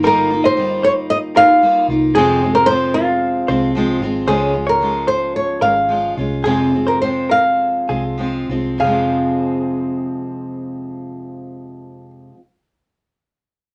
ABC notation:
X:1
M:4/4
L:1/16
Q:1/4=107
K:Fm
V:1 name="Nylon-string guitar"
B3 c3 d2 e2 f4 z2 | A3 B c2 F6 z4 | A3 B3 c2 d2 f4 z2 | A3 B c2 f8 z2 |
f16- | f16 |]
V:2 name="Clean electric guitar"
B z2 e2 z c z3 B z4 z | A z2 c2 z B z3 c z4 z | c z2 d2 z c z3 B z4 z | A z2 c2 z B z3 A z4 z |
A12 z4 | z16 |]
V:3 name="Steel-string acoustic guitar"
[G,B,EF]2 [B,EF]2 [G,B,EF]6 [B,EF]2 [G,B,EF]2 [B,EF]2 | [F,,C,F,A,CF]2 [F,A,CF]2 [F,A,CF]6 [F,A,CF]2 [F,A,CF]2 [F,A,CF]2 | [D,F,A,DF]2 [A,DF]2 [F,A,DF]6 [A,DF]2 [F,A,DF]2 [A,DF]2 | [F,,C,F,A,CF]2 [F,A,CF]2 [F,A,CF]6 [F,A,CF]2 [F,A,CF]2 [F,A,CF]2 |
[F,,C,F,A,CF]16- | [F,,C,F,A,CF]16 |]
V:4 name="Fingered electric bass" clef=bass
G,,,8- G,,,2 B,,,4 C,,2 | F,,,8- F,,,2 C,,4 A,,,2 | D,,8- D,,2 A,,,4 C,,2 | F,,,8- F,,,2 C,,4 C,,2 |
F,,,16- | F,,,16 |]